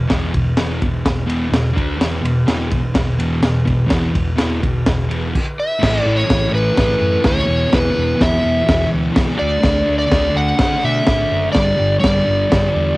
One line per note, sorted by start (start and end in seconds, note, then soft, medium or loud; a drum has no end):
0.07 0.31 E2 loud
0.07 0.31 B2 loud
0.07 0.32 E3 loud
0.07 kick loud
0.07 snare loud
0.07 ride medium
0.12 0.33 E1 loud
0.33 0.55 E2 medium
0.33 0.57 E2 medium
0.33 0.55 B2 medium
0.33 kick medium
0.33 ride medium
0.57 0.80 E1 loud
0.57 0.80 E2 medium
0.57 0.80 B2 medium
0.57 0.80 E3 loud
0.57 snare loud
0.57 ride medium
0.82 1.04 E1 medium
0.82 1.03 E2 medium
0.82 1.04 B2 medium
0.82 kick medium
0.82 ride medium
1.05 1.50 E1 medium
1.05 1.25 E2 medium
1.05 1.26 B2 medium
1.05 kick loud
1.05 snare loud
1.05 ride medium
1.26 1.48 E2 medium
1.26 1.48 B2 medium
1.26 1.51 E3 loud
1.26 ride medium
1.49 1.72 E2 medium
1.49 1.74 E2 medium
1.49 1.73 B2 loud
1.54 snare loud
1.54 ride medium
1.74 1.98 D2 medium
1.74 1.98 D3 medium
1.74 1.97 A3 loud
1.74 1.99 D4 loud
1.74 kick medium
1.78 ride medium
1.97 2.22 E1 loud
1.97 2.20 E2 loud
1.97 2.21 B2 loud
1.97 2.21 E3 loud
2.01 snare loud
2.01 ride loud
2.21 2.46 E1 medium
2.21 2.44 E2 medium
2.21 2.45 B2 medium
2.21 ride medium
2.46 2.92 E1 loud
2.46 2.69 E2 medium
2.46 2.69 B2 loud
2.46 2.70 E3 medium
2.46 snare loud
2.46 ride loud
2.70 2.93 E2 medium
2.70 2.92 B2 medium
2.70 kick loud
2.70 ride medium
2.94 3.18 E1 loud
2.94 3.16 E2 medium
2.94 3.17 B2 medium
2.94 kick loud
2.94 snare loud
2.94 ride loud
3.18 3.41 E1 loud
3.18 3.42 E2 medium
3.18 3.42 B2 loud
3.18 3.42 E3 medium
3.18 ride medium
3.42 3.65 E1 loud
3.42 3.64 E2 medium
3.42 3.64 B2 medium
3.42 snare loud
3.42 ride medium
3.65 3.90 E1 medium
3.65 3.86 E2 medium
3.65 3.87 B2 medium
3.65 kick medium
3.65 ride medium
3.87 4.10 E2 loud
3.87 4.10 B2 medium
3.87 4.12 E3 loud
3.87 snare loud
3.87 ride medium
3.91 4.14 E1 loud
3.91 kick loud
4.11 4.35 E2 medium
4.11 4.34 B2 medium
4.15 4.38 E2 loud
4.15 kick medium
4.15 ride medium
4.36 4.61 E1 medium
4.36 4.60 E2 medium
4.36 4.59 B2 medium
4.36 4.61 E3 medium
4.36 snare loud
4.36 ride loud
4.61 4.85 E1 medium
4.61 4.83 E2 medium
4.61 4.83 B2 medium
4.61 kick medium
4.61 ride medium
4.86 5.32 E1 medium
4.86 5.08 E2 medium
4.86 5.09 B2 medium
4.86 kick loud
4.86 snare loud
4.86 ride loud
5.09 5.32 E2 medium
5.09 5.33 B2 medium
5.09 5.33 E3 loud
5.09 ride medium
5.35 kick loud
5.35 crash loud
5.60 6.02 E5 medium
5.79 6.24 A2 loud
5.79 6.06 E3 loud
5.79 6.01 A3 loud
5.79 kick loud
5.79 snare loud
5.83 5.98 A1 medium
5.83 crash loud
5.83 crash medium
6.02 6.28 A3 medium
6.02 6.14 D5 medium
6.06 6.22 A1 medium
6.06 6.27 E3 medium
6.16 6.54 C#5 medium
6.25 6.71 A2 medium
6.25 6.52 E3 medium
6.25 6.48 A3 medium
6.30 6.46 A1 loud
6.30 kick loud
6.30 snare loud
6.30 crash medium
6.49 6.69 A1 medium
6.49 6.76 A3 medium
6.53 6.74 E3 medium
6.53 7.28 B4 loud
6.73 7.20 A2 medium
6.73 6.99 E3 loud
6.77 6.94 A2 medium
6.77 6.96 A3 loud
6.77 kick loud
6.77 snare loud
6.77 crash medium
6.98 7.17 F#2 loud
6.98 7.21 E3 medium
6.98 7.23 A3 medium
7.21 7.41 D2 loud
7.21 7.44 A2 medium
7.21 7.41 E3 medium
7.21 7.47 A3 medium
7.21 snare loud
7.21 crash medium
7.25 7.75 C#5 loud
7.25 kick loud
7.42 7.69 B2 medium
7.42 7.70 E3 medium
7.47 7.64 E1 loud
7.47 7.67 E2 medium
7.68 8.14 E2 loud
7.68 7.94 B2 loud
7.68 7.90 E3 loud
7.73 7.89 E1 loud
7.73 8.23 B4 loud
7.73 kick loud
7.73 snare loud
7.73 crash medium
7.91 8.18 E3 medium
7.96 8.13 E1 medium
7.96 8.17 B2 medium
8.15 8.61 E2 medium
8.15 8.43 B2 medium
8.19 8.37 E1 loud
8.19 8.38 E3 medium
8.19 8.89 E5 medium
8.19 kick loud
8.19 snare loud
8.19 crash medium
8.40 8.64 E3 medium
8.44 8.60 E1 medium
8.44 8.63 B2 medium
8.62 9.12 E2 medium
8.62 8.90 B2 loud
8.62 8.86 E3 loud
8.69 8.84 E2 loud
8.69 kick loud
8.69 snare loud
8.69 crash medium
8.87 9.15 E3 medium
8.92 9.08 D2 medium
8.92 9.14 B2 medium
9.13 9.32 B1 loud
9.13 9.37 E2 medium
9.13 9.38 B2 medium
9.13 9.36 E3 medium
9.13 kick loud
9.13 snare loud
9.13 crash medium
9.34 9.59 A3 medium
9.34 9.62 D4 loud
9.39 9.56 D2 medium
9.39 9.57 D3 medium
9.39 9.97 D5 medium
9.59 10.05 D3 loud
9.59 9.86 A3 loud
9.59 9.82 D4 loud
9.63 9.80 D2 loud
9.63 kick loud
9.63 snare loud
9.63 crash medium
9.82 10.10 D4 medium
9.87 10.04 D2 medium
9.87 10.07 A3 medium
9.99 10.36 D5 medium
10.07 10.54 D3 medium
10.07 10.33 A3 medium
10.11 10.28 D2 loud
10.11 10.29 D4 medium
10.11 kick loud
10.11 snare loud
10.11 crash medium
10.30 10.57 D4 medium
10.34 10.51 D2 medium
10.34 10.55 A3 medium
10.34 10.85 F#5 loud
10.55 11.02 D3 loud
10.55 10.82 A3 loud
10.55 10.78 D4 loud
10.55 snare loud
10.55 crash medium
10.60 10.76 D3 loud
10.60 kick loud
10.79 11.05 D4 medium
10.84 11.00 B2 loud
10.84 11.04 A3 medium
10.84 11.52 E5 medium
11.04 11.23 A1 medium
11.04 11.52 D3 medium
11.04 11.53 A3 loud
11.04 11.53 D4 medium
11.04 kick loud
11.04 snare loud
11.04 crash medium
11.31 11.47 F#1 medium
11.52 11.72 G1 loud
11.52 11.99 G2 medium
11.52 11.78 D3 medium
11.52 11.98 D5 loud
11.52 kick loud
11.52 snare loud
11.52 crash medium
11.58 11.75 G3 loud
11.76 11.95 G1 loud
11.76 12.00 D3 medium
11.76 12.03 G3 medium
12.00 12.49 G2 medium
12.00 12.29 D3 medium
12.00 12.97 D5 medium
12.00 snare loud
12.04 12.20 G1 loud
12.04 12.24 G3 medium
12.04 kick loud
12.04 crash medium
12.25 12.44 G1 medium
12.25 12.51 G3 medium
12.30 12.49 D3 medium
12.50 12.95 G2 loud
12.50 12.68 G2 loud
12.50 12.75 D3 loud
12.50 12.71 G3 loud
12.50 kick loud
12.50 snare loud
12.50 crash medium
12.72 12.91 E2 loud
12.72 12.97 G3 medium
12.76 12.97 D3 medium